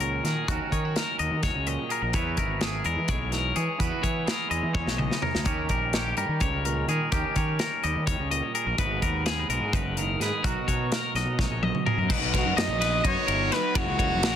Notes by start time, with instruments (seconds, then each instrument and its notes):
Already playing: fingered electric bass C#2, clean electric guitar D#3 F#3 C#4 F#4 A#4
0.00 clean electric guitar A#2 A#4, closed hi-hat
0.24 fingered electric bass D#3, clean electric guitar G#4 A#4, snare, closed hi-hat
0.48 fingered electric bass D#2, clean electric guitar D#3 C#4 F#4 A#4, kick, closed hi-hat
0.72 fingered electric bass D#3, clean electric guitar D#4 C#5, kick, closed hi-hat
0.85 clean electric guitar F#4
0.96 clean electric guitar A#4, snare, closed hi-hat
1.19 fingered electric bass D#2, clean electric guitar F#3 F#4 D#5, closed hi-hat
1.31 fingered electric bass D#3
1.43 fingered electric bass D#2, clean electric guitar C#5, kick, snare, closed hi-hat
1.55 fingered electric bass C#2
1.66 clean electric guitar A#2 D#5, closed hi-hat
1.89 clean electric guitar G#4 A#4, closed hi-hat
2.02 fingered electric bass A#1, clean electric guitar A#4
2.13 fingered electric bass E2, clean electric guitar E3 B3 E4 B4 C#5, kick, closed hi-hat
2.37 fingered electric bass G#1, clean electric guitar E4 A#4, kick, closed hi-hat
2.61 clean electric guitar G#4, snare, closed hi-hat
2.84 fingered electric bass E2, clean electric guitar G#3 E4 A#4, closed hi-hat
2.96 fingered electric bass E3
3.08 fingered electric bass B1, clean electric guitar C#5, kick, closed hi-hat
3.32 clean electric guitar E3 A#4, snare, closed hi-hat
3.56 fingered electric bass E3, clean electric guitar G#4 C#5, closed hi-hat
3.78 fingered electric bass E2, clean electric guitar E3 B3 E4 F#4 B4, kick, closed hi-hat
4.03 fingered electric bass E3, clean electric guitar E4 C#5, kick, closed hi-hat
4.27 clean electric guitar G#4 A#4, snare, closed hi-hat
4.49 fingered electric bass E2, clean electric guitar G#3 E4 D#5, closed hi-hat
4.62 fingered electric bass E3
4.74 fingered electric bass E2, clean electric guitar C#5, kick
4.86 fingered electric bass B1, snare
4.97 clean electric guitar E3 D#5, mid tom
5.11 snare
5.22 clean electric guitar A#4 C#5, floor tom
5.35 fingered electric bass D2, snare
5.45 fingered electric bass D#2, clean electric guitar D#3 C#4 G4 A#4 C#5, kick, closed hi-hat
5.68 fingered electric bass A#1, clean electric guitar G4 A#4, kick, closed hi-hat
5.93 clean electric guitar G4 C#5, snare, closed hi-hat
6.17 fingered electric bass G2, clean electric guitar G3 G4 A#4, closed hi-hat
6.29 fingered electric bass D#3
6.40 fingered electric bass C#2, clean electric guitar C#5, kick, closed hi-hat
6.65 clean electric guitar A#2 A#4, closed hi-hat
6.88 fingered electric bass D#3, clean electric guitar G#4 A#4, closed hi-hat
7.12 fingered electric bass D#2, clean electric guitar D#3 C#4 G4 A#4, kick, closed hi-hat
7.36 fingered electric bass D#3, clean electric guitar G4 C#5, kick, closed hi-hat
7.59 clean electric guitar A#4 C#5, snare, closed hi-hat
7.83 fingered electric bass D#2, clean electric guitar G3 G4 D#5, closed hi-hat
7.96 fingered electric bass D#3
8.07 fingered electric bass D#2, clean electric guitar C#5, kick, closed hi-hat
8.19 fingered electric bass C#2
8.30 clean electric guitar A#2 D#5, closed hi-hat
8.55 clean electric guitar G#4 A#4, closed hi-hat
8.66 fingered electric bass A#1, clean electric guitar A#4
8.78 fingered electric bass G#1, clean electric guitar G#2 B3 F#4 B4, kick, closed hi-hat
9.02 fingered electric bass D#2, clean electric guitar F#4 A#4, kick, closed hi-hat
9.26 clean electric guitar G#4, snare, closed hi-hat
9.39 clean electric guitar B4
9.49 fingered electric bass B1, clean electric guitar G#3 F#4 A#4, closed hi-hat
9.60 fingered electric bass G#2
9.73 fingered electric bass F#1, clean electric guitar B4, kick, closed hi-hat
9.97 clean electric guitar D#3 A#4, closed hi-hat
10.20 fingered electric bass G#2, clean electric guitar G#4 B4, snare, closed hi-hat
10.44 fingered electric bass B1, clean electric guitar B2 D#4 F#4 A#4, kick, closed hi-hat
10.68 fingered electric bass B2, clean electric guitar F#4 C#5, kick, closed hi-hat
10.92 clean electric guitar A#4, snare, closed hi-hat
11.14 fingered electric bass B1, clean electric guitar F#3 F#4 D#5, snare, closed hi-hat
11.26 fingered electric bass B2
11.39 fingered electric bass B1, clean electric guitar C#5, kick, snare
11.50 fingered electric bass A#1
11.63 clean electric guitar B2 D#5, high tom
11.75 mid tom
11.86 clean electric guitar G#4 A#4, mid tom
11.97 fingered electric bass F#2, clean electric guitar A#4
12.09 fingered electric bass B1, overdriven electric guitar B2 F#3 B3 D#4, clean electric guitar B4, kick, crash
12.21 fingered electric bass B1
12.33 clean electric guitar A#4, kick, snare, ride
12.38 trumpet F#4
12.46 fingered electric bass F#2
12.56 fingered electric bass F#2, overdriven electric guitar B2 F#3 B3 D#4, clean electric guitar D#5, snare, ride
12.60 trumpet D#5
12.68 fingered electric bass A#1
12.79 overdriven electric guitar F#3 B3 D#4, clean electric guitar B4, snare, ride
13.04 fingered electric bass F#2, overdriven electric guitar B2 F#3 B3 D#4, trumpet C#5, clean electric guitar D#5, kick, ride
13.28 fingered electric bass G1, overdriven electric guitar F#3 B3 D#4, clean electric guitar A#4, ride
13.52 clean electric guitar B4, trumpet B4, snare, ride
13.75 fingered electric bass F#1, overdriven electric guitar F#2 C#3 E3 A#3 E4, trumpet F#4, clean electric guitar C#5, kick, ride
13.86 fingered electric bass C#2
13.99 clean electric guitar C#5, kick, ride
14.10 fingered electric bass F#1
14.22 fingered electric bass A#1, overdriven electric guitar F#2 C#3 E3 A#3 E4, clean electric guitar A#4, snare, ride